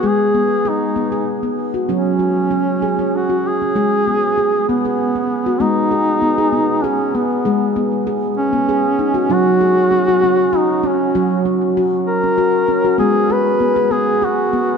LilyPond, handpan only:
<<
  \new Staff \with { instrumentName = "Handpan" } { \time 3/4 \key gis \minor \tempo 4 = 97 gis'8 b8 gis'8 b16 gis'8 b8 fis'16 | cis'8 fis'8 cis'8 gis'16 cis'8 fis'8 cis'16 | gis'8 b8 gis'8 b16 gis'8 b8 fis'16 | b8 gis'8 b16 gis'16 b8 gis'8 b8 |
gis'8 b8 gis'8 r16 b16 gis'8 dis'16 fis'16 | cis'8 gis'8 cis'16 fis'16 cis'8 fis'8 cis'8 | fis'8 cis'8 fis'8 r16 cis'16 fis'8 cis'16 fis'16 | b8 gis'8 b16 gis'16 b8 gis'8 b8 | }
  \new Staff \with { instrumentName = "Handpan" } { \clef bass \time 3/4 \key gis \minor gis2. | fis2. | gis2. | gis2. |
gis2. | fis2. | fis2. | gis2. | }
>>